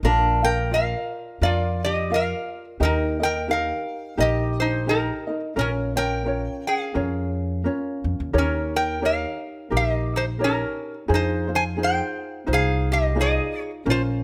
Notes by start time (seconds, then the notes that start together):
0.03 A#1 D4 F4 A#4 D5 F5
0.42 F4 A#4 F5 G5
0.71 F4 A#4 D5 F5
1.41 F2 F4 A#4 D5 F5
1.84 G4 D#5
2.10 F4 A#4 D5 F5
2.14 A#4 F5
2.80 D#2 D#4 G4 A#4 D#5
2.85 D#4
3.20 D#4 A#4 D#5 G5
3.25 A#4
3.48 D#4 G4 A#4 D#5 F5
3.53 A#4
4.17 A#1 D#4 G4 A#4 D#5
4.22 G4
4.60 D#4 C5
4.87 D#4 G4 A#4 D#5
5.27 D#4 A#4 D#5
5.56 A#1 C#4 F4 A#4 C#5
5.61 C#4
5.96 C#4 F4 A#4 C#5 G5
6.24 C#4 F4 A#4 C#5
6.67 G#4 F5
6.94 F2 C#4 F4 A#4 C#5
7.64 C#4 F4 A#4 C#5
8.04 F2
8.20 D#2
8.33 D#2 D#4 G4 A#4 C#5
8.38 C#4 A#4
8.76 A#4 G5
9.01 D#4 G4 A#4 C#5
9.05 A#4 F5
9.70 A#1 D#4 G4 A#4
9.77 G4 D#5
10.16 D#4 C5
10.39 D#4 G4 A#4 C#5
10.44 C#4 A#4
11.08 F2 D#4 F4 G#4 C5
11.14 D#4 C5
11.47 D#4 F4 C5
11.55 C5 G#5
11.77 D#4 F4 G#4 C5
11.83 C5 G5
12.47 C2 D#4 F4 C5
12.53 G#4 F5
12.92 G4 D#5
13.15 D#4 F4 G#4 C5
13.21 G#4 D#5
13.85 A#1 C#4 F4 A#4 C5
13.90 F4 C5